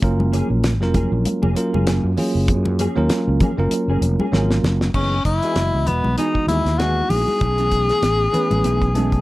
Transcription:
0.02 F#1 F#3 A#3 C#4 F4 A#4, kick, closed hi-hat
0.19 muted clean electric guitar stroke, high conga
0.32 F3 A#3 C#4 G#4, closed hi-hat
0.50 A#1, muted clean electric guitar stroke
0.64 snare, closed hi-hat
0.80 F1 F#3 A#3 C#4 F4 A#4, muted clean electric guitar stroke, snare
0.94 F3 A#3 C#4 G#4, kick, closed hi-hat, low conga
1.12 A#1, muted clean electric guitar stroke
1.25 muted clean electric guitar stroke, closed hi-hat, high conga
1.42 F1 F3 A#3 C#4 G#4, high conga
1.55 F#3 A#3 C#4 F4 A#4, muted clean electric guitar stroke, closed hi-hat
1.73 F#1 A#3 C#4 G#4, high conga
1.87 F3 A#3 C#4 G#4, snare, closed hi-hat
2.04 F#2, muted clean electric guitar stroke
2.17 F#3 A#3 C#4 F4 G#4, muted clean electric guitar stroke, open hi-hat, low conga
2.35 F#1
2.48 F#2, kick, closed hi-hat
2.65 muted clean electric guitar stroke, high conga
2.79 F3 A#3 C#4 G#4, closed hi-hat
2.96 D#2 F#3 A#3 C#4 F4 A#4, muted clean electric guitar stroke
3.09 snare, closed hi-hat
3.28 C#2, muted clean electric guitar stroke
3.40 F3 A#3 C#4 G#4, kick, closed hi-hat, low conga
3.57 F#1 F#3 A#3 C#4 F4 A#4, muted clean electric guitar stroke
3.71 muted clean electric guitar stroke, closed hi-hat
3.88 F#1 F3 A#3 C#4 G#4
4.01 F1, muted clean electric guitar stroke, closed hi-hat
4.20 A#3 C#4 G#4, high conga
4.32 G#1 F3 F#3 A#3 C#4 F4 G#4 A#4, snare
4.51 muted clean electric guitar stroke, snare
4.63 F#1, muted clean electric guitar stroke, snare, low conga
4.81 snare
4.94 F#1 E3 B3 C#4 D#4 G#4, kick, crash
5.25 F#1 E4, muted clean electric guitar stroke, kick, closed hi-hat
5.42 E3 G#3 B3 D#4 F#4 G#4 D#5, closed hi-hat
5.56 F#1, muted clean electric guitar stroke, snare, closed hi-hat
5.73 C#2, muted clean electric guitar stroke
5.86 E1 B3, closed hi-hat, low conga
6.04 B1, muted clean electric guitar stroke, high conga
6.17 E3 G#3 B3 D#4 F#4 G#4, closed hi-hat
6.35 muted fretless electric bass stroke, muted clean electric guitar stroke, kick
6.47 D#2 E3 B3 D#4 E4 G#4, closed hi-hat, high conga
6.66 D#2, muted clean electric guitar stroke, snare, closed hi-hat
6.79 E3 G#3 B3 D#4 E4 F#4 G#4, snare, closed hi-hat
7.10 A#1 G#4, muted clean electric guitar stroke, open hi-hat, low conga
7.28 muted clean electric guitar stroke, high conga
7.41 B1 A3 C#4 E4 G#4, kick, closed hi-hat
7.58 E3 A3 B3 C#4 G#4, closed hi-hat
7.72 muted clean electric guitar stroke, kick, closed hi-hat
7.89 C#4 E4 G#4, snare, closed hi-hat
8.02 A1, muted clean electric guitar stroke, snare, closed hi-hat
8.21 muted clean electric guitar stroke
8.32 E3 A3 B3 C#4 B4, closed hi-hat, low conga
8.51 A1, muted clean electric guitar stroke, closed hi-hat, high conga
8.64 B1 A3 C#4 E4 G#4, closed hi-hat
8.82 muted clean electric guitar stroke, kick, closed hi-hat
8.94 E3 G#3 A3 B3 C#4 E4 G#4 A5, closed hi-hat, high conga
9.12 muted clean electric guitar stroke, kick, closed hi-hat

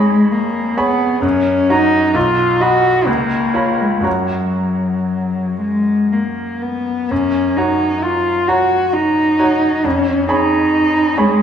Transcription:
Already playing: F2 G#3 G#4 C#5 B5
0.32 A#3
0.77 B3 G#4 C#5 B5
1.22 F#2 C#4
1.69 D#4 F#4 C#5 A#5
2.14 B1 F4
2.60 F#4 D#5 B5
3.07 C#2 A#3
3.54 F4 C#5 B5
3.81 G#3
4.00 F#2 F#4 C#5
4.04 A#5
4.09 F#3
5.61 G#3
6.13 A#3
6.62 B3
7.11 F#2 C#4
7.57 D#4 F#4 C#5 A#5
8.03 F4
8.48 F#4 C#5 A#5
8.93 D#4
9.39 F#4 C#5 A#5
9.84 F2 C#4
10.29 D#4 G#4 C#5 B5
11.17 G#3 G#4 C#5 B5

